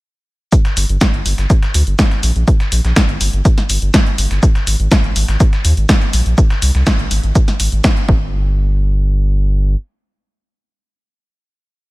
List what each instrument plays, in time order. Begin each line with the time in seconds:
0.52 kick, closed hi-hat, shaker
0.65 snare, closed hi-hat
0.77 analog synth bass G1, open hi-hat, shaker
0.89 analog synth bass G1, closed hi-hat
1.01 kick, snare, closed hi-hat, shaker
1.14 analog synth bass G1, closed hi-hat
1.26 analog synth bass G1, open hi-hat, shaker
1.38 analog synth bass G1, snare, closed hi-hat
1.50 kick, closed hi-hat, shaker
1.63 snare, closed hi-hat
1.74 analog synth bass D2, open hi-hat, shaker
1.87 analog synth bass G1, closed hi-hat
1.99 kick, snare, closed hi-hat, shaker
2.11 snare, closed hi-hat
2.23 analog synth bass A#1, open hi-hat, shaker
2.36 analog synth bass A#1, closed hi-hat
2.48 kick, closed hi-hat, shaker
2.60 snare, closed hi-hat
2.72 analog synth bass A#1, open hi-hat, shaker
2.84 analog synth bass A#1, snare, closed hi-hat
2.96 kick, snare, closed hi-hat, shaker
3.09 analog synth bass G1, closed hi-hat
3.21 analog synth bass G1, open hi-hat, shaker
3.33 analog synth bass G1, closed hi-hat
3.45 kick, closed hi-hat, shaker
3.58 snare, closed hi-hat
3.69 analog synth bass G1, open hi-hat, shaker
3.82 analog synth bass G1, closed hi-hat
3.94 kick, snare, closed hi-hat, shaker
4.07 closed hi-hat
4.18 analog synth bass G1, open hi-hat, shaker
4.31 analog synth bass G1, snare, closed hi-hat
4.43 kick, closed hi-hat, shaker
4.55 snare, closed hi-hat
4.67 analog synth bass G#1, open hi-hat, shaker
4.80 analog synth bass G#1, closed hi-hat
4.91 kick, snare, closed hi-hat, shaker
5.04 analog synth bass G#1, closed hi-hat
5.16 analog synth bass G#1, open hi-hat, shaker
5.28 analog synth bass G#1, snare, closed hi-hat
5.40 kick, closed hi-hat, shaker
5.53 snare, closed hi-hat
5.65 analog synth bass D#2, open hi-hat, shaker
5.77 analog synth bass G#1, closed hi-hat
5.89 kick, snare, closed hi-hat, shaker
6.02 snare, closed hi-hat
6.13 analog synth bass A#1, open hi-hat, shaker
6.26 analog synth bass A#1, closed hi-hat
6.38 kick, closed hi-hat, shaker
6.50 snare, closed hi-hat
6.62 analog synth bass C2, open hi-hat, shaker
6.75 analog synth bass C2, snare, closed hi-hat
6.87 kick, snare, closed hi-hat, shaker
6.99 analog synth bass G#1, closed hi-hat
7.11 analog synth bass G#1, open hi-hat, shaker
7.23 analog synth bass G#1, closed hi-hat
7.35 kick, closed hi-hat, shaker
7.48 snare, closed hi-hat
7.60 analog synth bass G#1, open hi-hat, shaker
7.72 analog synth bass G#1, closed hi-hat
7.84 kick, snare, closed hi-hat, shaker
7.97 closed hi-hat
8.09 analog synth bass G1, kick